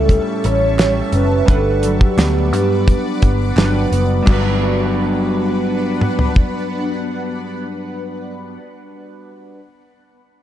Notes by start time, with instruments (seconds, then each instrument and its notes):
Already playing: picked electric bass C#2, clean electric guitar A2 C#4 E4, synth keys G3 C#4 E4 A4, ambient pad G3 E5 A5 C#6, soft synth lead A4
0.09 clean electric guitar G3, kick, closed hi-hat
0.44 picked electric bass A1, clean electric guitar C#4, soft synth lead C#5, closed hi-hat
0.79 clean electric guitar G3, soft synth lead C#5, snare, clap, closed hi-hat
1.13 picked electric bass F#1, clean electric guitar C#4, soft synth lead B4, closed hi-hat
1.46 picked electric bass G1, synth keys G3 D4 F#5, soft synth lead A4, ambient pad B4 D5 D6, kick, closed hi-hat
1.50 synth keys B4, ambient pad F#5
1.83 clean electric guitar F#3, closed hi-hat
2.00 soft synth lead G4, kick
2.18 picked electric bass D2, clean electric guitar B3, snare, clap, closed hi-hat
2.52 picked electric bass G2, clean electric guitar D4, closed hi-hat
2.88 kick, closed hi-hat
3.22 picked electric bass G1, clean electric guitar B3, kick, closed hi-hat
3.56 picked electric bass G1, clean electric guitar F#3, synth keys G3 D4 F#4 B4, snare, clap, closed hi-hat
3.92 picked electric bass F#1, clean electric guitar B3, closed hi-hat
4.23 clean electric guitar G2, synth keys G3 D4
4.27 picked electric bass G1, clean electric guitar F#3 B3, ambient pad B3 D4 B4 F#5, synth keys F#4, kick, clap, crash
4.31 clean electric guitar D4, synth keys B4
6.01 mid tom
6.19 floor tom
6.36 kick